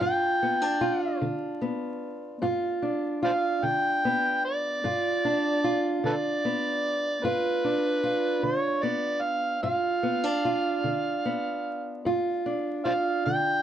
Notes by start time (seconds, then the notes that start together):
Already playing: D4
0.00 G2 F4 G5
0.42 B3
0.62 D4
0.81 F4
1.22 D3
1.61 B3
2.42 G2 F4
2.82 D4
3.23 F4 C5 D5 F5
3.63 D3 G5
4.05 B3
4.45 D5
4.84 G2 F4
5.25 D4
5.64 F4
6.04 D3 A4 B4 D5
6.45 B3
7.23 G2 F4 B4
7.64 D4
8.03 F4
8.43 D3 C#5
8.83 B3 D5
9.21 F5
9.63 G2 F4 F5
10.03 B3
10.24 D4
10.45 F4
10.84 D3
11.25 B3
12.05 G2 F4
12.46 D4
12.85 F4 C5 D5 F5
13.25 D3 G5